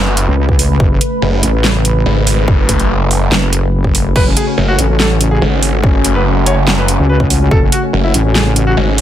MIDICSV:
0, 0, Header, 1, 6, 480
1, 0, Start_track
1, 0, Key_signature, 3, "minor"
1, 0, Tempo, 419580
1, 915, Time_signature, 4, 2, 24, 8
1, 10309, End_track
2, 0, Start_track
2, 0, Title_t, "Analog synth pad"
2, 0, Program_c, 0, 89
2, 0, Note_on_c, 0, 49, 84
2, 0, Note_on_c, 0, 57, 76
2, 0, Note_on_c, 0, 71, 93
2, 4734, Note_off_c, 0, 71, 0
2, 4756, Note_on_c, 0, 66, 94
2, 10309, Note_off_c, 0, 49, 0
2, 10309, Note_off_c, 0, 57, 0
2, 10309, Note_off_c, 0, 66, 0
2, 10309, End_track
3, 0, Start_track
3, 0, Title_t, "Grand piano"
3, 0, Program_c, 1, 0
3, 4756, Note_on_c, 1, 71, 102
3, 4832, Note_off_c, 1, 71, 0
3, 4879, Note_on_c, 1, 61, 67
3, 4953, Note_off_c, 1, 61, 0
3, 4997, Note_on_c, 1, 68, 95
3, 5073, Note_off_c, 1, 68, 0
3, 5116, Note_on_c, 1, 61, 65
3, 5191, Note_off_c, 1, 61, 0
3, 5234, Note_on_c, 1, 61, 68
3, 5312, Note_off_c, 1, 61, 0
3, 5357, Note_on_c, 1, 66, 99
3, 5432, Note_off_c, 1, 66, 0
3, 5474, Note_on_c, 1, 61, 67
3, 5552, Note_off_c, 1, 61, 0
3, 5598, Note_on_c, 1, 61, 68
3, 5672, Note_off_c, 1, 61, 0
3, 5714, Note_on_c, 1, 69, 100
3, 5792, Note_off_c, 1, 69, 0
3, 5837, Note_on_c, 1, 61, 64
3, 5912, Note_off_c, 1, 61, 0
3, 5956, Note_on_c, 1, 61, 63
3, 6033, Note_off_c, 1, 61, 0
3, 6077, Note_on_c, 1, 68, 99
3, 6152, Note_off_c, 1, 68, 0
3, 6196, Note_on_c, 1, 61, 66
3, 6273, Note_off_c, 1, 61, 0
3, 6317, Note_on_c, 1, 61, 64
3, 6392, Note_off_c, 1, 61, 0
3, 6435, Note_on_c, 1, 61, 68
3, 6512, Note_off_c, 1, 61, 0
3, 6675, Note_on_c, 1, 61, 68
3, 6752, Note_off_c, 1, 61, 0
3, 6795, Note_on_c, 1, 61, 64
3, 6871, Note_off_c, 1, 61, 0
3, 6915, Note_on_c, 1, 61, 66
3, 6992, Note_off_c, 1, 61, 0
3, 7037, Note_on_c, 1, 71, 97
3, 7111, Note_off_c, 1, 71, 0
3, 7156, Note_on_c, 1, 61, 69
3, 7232, Note_off_c, 1, 61, 0
3, 7278, Note_on_c, 1, 61, 64
3, 7352, Note_off_c, 1, 61, 0
3, 7397, Note_on_c, 1, 73, 98
3, 7473, Note_off_c, 1, 73, 0
3, 7518, Note_on_c, 1, 61, 68
3, 7592, Note_off_c, 1, 61, 0
3, 7634, Note_on_c, 1, 61, 65
3, 7712, Note_off_c, 1, 61, 0
3, 7756, Note_on_c, 1, 71, 95
3, 7831, Note_off_c, 1, 71, 0
3, 7875, Note_on_c, 1, 61, 64
3, 7952, Note_off_c, 1, 61, 0
3, 7997, Note_on_c, 1, 61, 67
3, 8072, Note_off_c, 1, 61, 0
3, 8116, Note_on_c, 1, 71, 94
3, 8192, Note_off_c, 1, 71, 0
3, 8237, Note_on_c, 1, 61, 64
3, 8312, Note_off_c, 1, 61, 0
3, 8357, Note_on_c, 1, 61, 68
3, 8433, Note_off_c, 1, 61, 0
3, 8478, Note_on_c, 1, 61, 65
3, 8552, Note_off_c, 1, 61, 0
3, 8595, Note_on_c, 1, 69, 105
3, 8672, Note_off_c, 1, 69, 0
3, 8718, Note_on_c, 1, 61, 65
3, 8792, Note_off_c, 1, 61, 0
3, 8836, Note_on_c, 1, 66, 97
3, 8912, Note_off_c, 1, 66, 0
3, 8958, Note_on_c, 1, 61, 64
3, 9032, Note_off_c, 1, 61, 0
3, 9075, Note_on_c, 1, 61, 68
3, 9152, Note_off_c, 1, 61, 0
3, 9197, Note_on_c, 1, 64, 96
3, 9272, Note_off_c, 1, 64, 0
3, 9316, Note_on_c, 1, 61, 68
3, 9392, Note_off_c, 1, 61, 0
3, 9439, Note_on_c, 1, 61, 69
3, 9513, Note_off_c, 1, 61, 0
3, 9557, Note_on_c, 1, 68, 94
3, 9633, Note_off_c, 1, 68, 0
3, 9678, Note_on_c, 1, 61, 66
3, 9752, Note_off_c, 1, 61, 0
3, 9796, Note_on_c, 1, 61, 65
3, 9873, Note_off_c, 1, 61, 0
3, 9918, Note_on_c, 1, 66, 98
3, 9992, Note_off_c, 1, 66, 0
3, 10036, Note_on_c, 1, 61, 67
3, 10113, Note_off_c, 1, 61, 0
3, 10158, Note_on_c, 1, 61, 66
3, 10232, Note_off_c, 1, 61, 0
3, 10309, End_track
4, 0, Start_track
4, 0, Title_t, "Wobble bass"
4, 0, Program_c, 2, 39
4, 317, Note_on_c, 2, 37, 101
4, 896, Note_off_c, 2, 37, 0
4, 916, Note_on_c, 2, 30, 98
4, 1137, Note_off_c, 2, 30, 0
4, 1636, Note_on_c, 2, 33, 98
4, 2337, Note_off_c, 2, 33, 0
4, 3797, Note_on_c, 2, 30, 97
4, 4737, Note_off_c, 2, 30, 0
4, 4756, Note_on_c, 2, 30, 96
4, 4977, Note_off_c, 2, 30, 0
4, 5476, Note_on_c, 2, 33, 99
4, 6177, Note_off_c, 2, 33, 0
4, 7998, Note_on_c, 2, 37, 101
4, 8577, Note_off_c, 2, 37, 0
4, 8596, Note_on_c, 2, 30, 98
4, 8817, Note_off_c, 2, 30, 0
4, 9315, Note_on_c, 2, 33, 102
4, 10017, Note_off_c, 2, 33, 0
4, 10309, End_track
5, 0, Start_track
5, 0, Title_t, "Detuned saw bass"
5, 0, Program_c, 3, 39
5, 0, Note_on_c, 3, 30, 97
5, 298, Note_off_c, 3, 30, 0
5, 1395, Note_on_c, 3, 30, 101
5, 1616, Note_off_c, 3, 30, 0
5, 2355, Note_on_c, 3, 32, 105
5, 2816, Note_off_c, 3, 32, 0
5, 2835, Note_on_c, 3, 30, 102
5, 3776, Note_off_c, 3, 30, 0
5, 5236, Note_on_c, 3, 30, 100
5, 5457, Note_off_c, 3, 30, 0
5, 6196, Note_on_c, 3, 32, 101
5, 6656, Note_off_c, 3, 32, 0
5, 6676, Note_on_c, 3, 30, 105
5, 7617, Note_off_c, 3, 30, 0
5, 7635, Note_on_c, 3, 30, 98
5, 7978, Note_off_c, 3, 30, 0
5, 9076, Note_on_c, 3, 30, 100
5, 9297, Note_off_c, 3, 30, 0
5, 10035, Note_on_c, 3, 32, 102
5, 10309, Note_off_c, 3, 32, 0
5, 10309, End_track
6, 0, Start_track
6, 0, Title_t, "Drums"
6, 195, Note_on_c, 9, 42, 78
6, 309, Note_off_c, 9, 42, 0
6, 557, Note_on_c, 9, 36, 61
6, 672, Note_off_c, 9, 36, 0
6, 675, Note_on_c, 9, 46, 97
6, 790, Note_off_c, 9, 46, 0
6, 915, Note_on_c, 9, 36, 112
6, 1030, Note_off_c, 9, 36, 0
6, 1155, Note_on_c, 9, 42, 79
6, 1270, Note_off_c, 9, 42, 0
6, 1636, Note_on_c, 9, 42, 82
6, 1750, Note_off_c, 9, 42, 0
6, 1875, Note_on_c, 9, 38, 122
6, 1990, Note_off_c, 9, 38, 0
6, 2115, Note_on_c, 9, 42, 78
6, 2230, Note_off_c, 9, 42, 0
6, 2596, Note_on_c, 9, 46, 98
6, 2710, Note_off_c, 9, 46, 0
6, 2836, Note_on_c, 9, 36, 113
6, 2950, Note_off_c, 9, 36, 0
6, 3075, Note_on_c, 9, 42, 85
6, 3076, Note_on_c, 9, 36, 63
6, 3190, Note_off_c, 9, 36, 0
6, 3190, Note_off_c, 9, 42, 0
6, 3198, Note_on_c, 9, 42, 39
6, 3312, Note_off_c, 9, 42, 0
6, 3555, Note_on_c, 9, 46, 67
6, 3670, Note_off_c, 9, 46, 0
6, 3795, Note_on_c, 9, 38, 117
6, 3910, Note_off_c, 9, 38, 0
6, 4035, Note_on_c, 9, 42, 81
6, 4150, Note_off_c, 9, 42, 0
6, 4398, Note_on_c, 9, 36, 63
6, 4512, Note_off_c, 9, 36, 0
6, 4516, Note_on_c, 9, 46, 99
6, 4630, Note_off_c, 9, 46, 0
6, 4756, Note_on_c, 9, 36, 115
6, 4756, Note_on_c, 9, 49, 77
6, 4870, Note_off_c, 9, 36, 0
6, 4870, Note_off_c, 9, 49, 0
6, 4996, Note_on_c, 9, 42, 88
6, 5110, Note_off_c, 9, 42, 0
6, 5475, Note_on_c, 9, 42, 88
6, 5590, Note_off_c, 9, 42, 0
6, 5715, Note_on_c, 9, 38, 121
6, 5830, Note_off_c, 9, 38, 0
6, 5956, Note_on_c, 9, 42, 82
6, 6070, Note_off_c, 9, 42, 0
6, 6436, Note_on_c, 9, 46, 99
6, 6550, Note_off_c, 9, 46, 0
6, 6676, Note_on_c, 9, 36, 124
6, 6790, Note_off_c, 9, 36, 0
6, 6916, Note_on_c, 9, 42, 88
6, 7030, Note_off_c, 9, 42, 0
6, 7395, Note_on_c, 9, 42, 86
6, 7510, Note_off_c, 9, 42, 0
6, 7635, Note_on_c, 9, 38, 127
6, 7750, Note_off_c, 9, 38, 0
6, 7875, Note_on_c, 9, 42, 85
6, 7990, Note_off_c, 9, 42, 0
6, 8237, Note_on_c, 9, 36, 66
6, 8352, Note_off_c, 9, 36, 0
6, 8355, Note_on_c, 9, 46, 97
6, 8470, Note_off_c, 9, 46, 0
6, 8595, Note_on_c, 9, 36, 127
6, 8710, Note_off_c, 9, 36, 0
6, 8835, Note_on_c, 9, 42, 88
6, 8950, Note_off_c, 9, 42, 0
6, 9315, Note_on_c, 9, 42, 85
6, 9429, Note_off_c, 9, 42, 0
6, 9554, Note_on_c, 9, 38, 127
6, 9669, Note_off_c, 9, 38, 0
6, 9794, Note_on_c, 9, 42, 81
6, 9909, Note_off_c, 9, 42, 0
6, 10309, End_track
0, 0, End_of_file